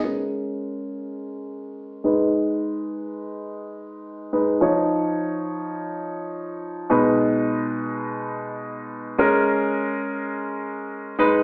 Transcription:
\new Staff \with { instrumentName = "Grand piano" } { \time 4/4 \key ais \phrygian \tempo 4 = 105 <gis cis' ais'>2.~ <gis cis' ais'>8 <gis dis' b'>8~ | <gis dis' b'>2.~ <gis dis' b'>8 <gis dis' b'>8 | <eis dis' cis''>1 | <b, gis dis' b'>1 |
<gis cis' ais'>2.~ <gis cis' ais'>8 <gis dis' b'>8 | }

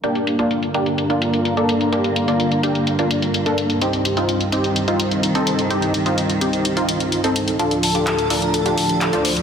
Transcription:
<<
  \new Staff \with { instrumentName = "Digital synth lead" } { \time 4/4 \key g \minor \tempo 4 = 127 r1 | r1 | r1 | r1 |
r8 a'8 a'8 bes'8 a'8 a'4 r8 | }
  \new Staff \with { instrumentName = "Supersaw synth" } { \time 4/4 \key g \minor <bes d' g'>8. <bes d' f'>8 r16 <bes d' g'>8. <bes d' f'>4 <bes d' a'>8. | <bes d' g'>8. <bes d' f'>8 r16 <bes d' g'>8. <bes d' f'>4 <bes d' a'>8. | <c' ees' g'>8. <c' ees' f'>8 r16 <c' ees' g'>8. <c' ees' f'>4 <c' ees' a'>8. | <c' ees' g'>8. <c' ees' f'>8 r16 <c' ees' g'>8. <c' ees' f'>4 <c' ees' a'>8. |
<d' f' a'>8. <d' f' g'>8 r16 <d' f' a'>8. <d' f' g'>4 <d' f' c''>8. | }
  \new Staff \with { instrumentName = "String section" } { \clef bass \time 4/4 \key g \minor <g, d bes>1~ | <g, d bes>1 | <c, ees>1~ | <c, ees>1 |
<d, a, f>1 | }
  \new DrumStaff \with { instrumentName = "Drums" } \drummode { \time 4/4 hh16 hh16 hh16 hh16 hh16 hh16 hh16 hh16 hh16 hh16 hh16 hh16 hh16 hh16 hh16 hh16 | hh16 hh16 hh16 hh16 hh16 hh16 hh16 hh16 hh16 hh16 hh16 hh16 hh16 hh16 hh16 hh16 | hh16 hh16 hh16 hh16 hh16 hh16 hh16 hh16 hh16 hh16 hh16 hh16 hh16 hh16 hh16 hh16 | hh16 hh16 hh16 hh16 hh16 hh16 hh16 hh16 hh16 hh16 hh16 hh16 hh16 hh16 hh16 hh16 |
hh16 hh16 hho16 hh16 <hc hh>16 hh16 hho16 hh16 hh16 hh16 hho16 hh16 <hc hh>16 hh16 hho16 hh16 | }
>>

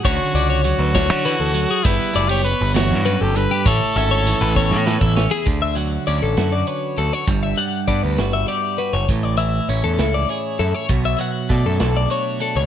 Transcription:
<<
  \new Staff \with { instrumentName = "Clean electric guitar" } { \time 6/8 \key d \lydian \tempo 4. = 66 cis''8 d''16 cis''8 b'16 cis''8 b'16 a'8 gis'16 | b'8 d''16 cis''8 b'16 cis''8 b'16 a'8 g'16 | cis''8 e''16 cis''8 b'16 cis''8 b'16 a'8 gis'16 | r16 e''16 fis''8 d''16 a'8 d''16 cis''8 a'16 cis''16 |
r16 e''16 fis''8 d''16 b'8 e''16 d''8 b'16 cis''16 | r16 d''16 e''8 cis''16 a'8 d''16 cis''8 a'16 cis''16 | r16 e''16 fis''8 d''16 a'8 d''16 cis''8 a'16 cis''16 | }
  \new Staff \with { instrumentName = "Trumpet" } { \time 6/8 \key d \lydian fis'4 fis'2 | e'8. g'16 b'8 fis'8. g'16 b'8 | a'2~ a'8 r8 | r2. |
r2. | r2. | r2. | }
  \new Staff \with { instrumentName = "Clean electric guitar" } { \time 6/8 \key d \lydian << { cis'8 cis'2~ cis'8 | <g b>8 a16 b2~ b16 | e'8 cis'4. cis'16 e'16 cis'16 e'16 | r4 cis'8 fis'8 b'8 fis'8 |
r4 b8 fis'8 g'8 fis'8 | r4 cis'8 e'8 gis'8 e'8 | r4 a8 d'8 fis'8 d'8 | } \\ { d4 fis8 d8 e8 fis8 | r4. e,8 fis,8 g,8 | a,4 e8 e,4. | d8 fis2~ fis8 |
g,8 g2~ g8 | a,8 e2~ e8 | b,8 fis2~ fis8 | } >> }
  \new Staff \with { instrumentName = "Picked electric bass" } { \clef bass \time 6/8 \key d \lydian d,16 r16 cis,8. d,8 d8 d,8 r16 | g,,16 r16 fis,,8. g,,8 g,8 g,,8 r16 | a,,16 r16 gis,,8. a,,8 a,8 a,,8 r16 | d,4 d,16 a,,16 fis,8 r8 d,16 r16 |
g,,8 r8 g,16 d,16 g,,8 r8. fis,,16 | a,,4 a,,16 e,16 cis,8 r8 fis,16 r16 | b,,8 r8 b,16 fis,16 b,,8 r8. cis,16 | }
  \new DrumStaff \with { instrumentName = "Drums" } \drummode { \time 6/8 <hh bd>8 hh8 hh8 <hh bd sn>8 hh8 hh8 | <hh bd>8 hh8 hh8 <hh sn>8 hh8 hh8 | <hh bd>8 hh8 hh8 bd8 sn16 bd16 sn8 | <hh bd>8 hh8 hh8 <hh sn>8 hh8 hh8 |
<hh bd>8 hh8 <hh bd>8 <hh sn>8 hh8 hh8 | <hh bd>8 hh8 hh8 <hh sn>8 hh8 hh8 | <hh bd>8 hh8 <hh bd>8 <hh sn>8 hh8 hh8 | }
>>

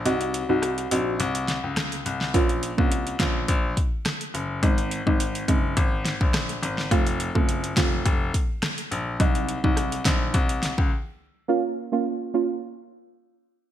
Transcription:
<<
  \new Staff \with { instrumentName = "Synth stab" } { \time 4/4 \key bes \minor \tempo 4 = 105 <c' ees' ges'>8. <c' ees' ges'>8. <c' ees' ges'>8 r2 | <bes des' f'>8. <bes des' f'>8. <bes des' f'>8 r2 | <aes c' ees'>8. <aes c' ees'>8. <aes c' ees'>8 r2 | <a c' f'>8. <a c' f'>8. <a c' f'>8 r2 |
<ges c' ees'>8. <ges c' ees'>8. <ges c' ees'>8 r2 | <bes des' f'>8. <bes des' f'>8. <bes des' f'>8 r2 | }
  \new Staff \with { instrumentName = "Grand piano" } { \clef bass \time 4/4 \key bes \minor c,8. c,8. bes,,8 c,8. des,8. c,8 | bes,,8. c,8. bes,,8 bes,,8 r4 ges,,8 | aes,,8. aes,,8. ges,,8 aes,,8. bes,,8. aes,,8 | f,,8. ges,,8. f,,8 f,,8 r4 bes,,8 |
c,8. c,8. bes,,8 c,8. des,16 r4 | r1 | }
  \new DrumStaff \with { instrumentName = "Drums" } \drummode { \time 4/4 hh16 hh16 hh8 <hh ss>16 hh16 hh8 hh16 hh16 <hh sn>8 <hh ss sn>16 hh16 hh16 sn16 | <hh bd>16 hh16 hh16 bd16 hh16 hh16 <hh bd sn>8 <hh bd>8 <hh bd>8 <hh ss sn>16 hh16 hh8 | <hh bd>16 hh16 hh16 bd16 hh16 hh16 <hh bd>8 <hh bd>8 <hh sn>16 bd16 <hh ss sn>16 hh16 hh16 sn16 | <hh bd>16 hh16 hh16 bd16 hh16 hh16 <hh bd sn>8 <hh bd>8 <hh bd>8 <hh ss sn>16 hh16 hh8 |
<hh bd>16 hh16 hh16 bd16 <hh ss>16 hh16 <hh bd sn>8 <hh bd>16 hh16 <hh sn>16 bd16 r4 | r4 r4 r4 r4 | }
>>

